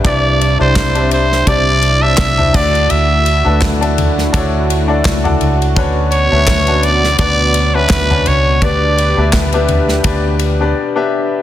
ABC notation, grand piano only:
X:1
M:4/4
L:1/16
Q:"Swing 16ths" 1/4=84
K:D
V:1 name="Grand piano"
[DEG=cd]2 z [DEGcd] z [DEGce]2 z [DEGcd]2 z [DEGcd] z [DEGce] [DEFAd]2- | [DEFAd]2 z [DEFAB] z [DEFAe]2 z [DEFAc]2 z [DEFAd] z [DEFAd]2 z | [CDFBc]2 z [CDFBe] z [CDFBc]2 z [B,DFBd]2 z [CDFBe] z [CDFBc]2 z | [B,DGBd]2 z [B,DGBe] z [B,DGBe]2 z [B,DGBd]2 z [B,DGBd] z [B,DGBe]2 z |]
V:2 name="Grand piano" clef=bass
G,,6 z8 A,,2- | A,,4 z12 | D,6 z8 z2 | D,6 z8 z2 |]